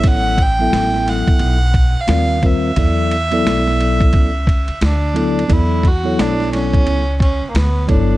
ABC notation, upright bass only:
X:1
M:4/4
L:1/16
Q:"Swing 16ths" 1/4=88
K:Edor
V:1 name="Upright bass" clef=bass
A,,,4 A,,,3 z B,,,3 z ^D,,4 | E,,4 B,,,4 C,,3 z D,,4 | E,,4 B,,,4 C,,3 z D,,2 G,,,2 |]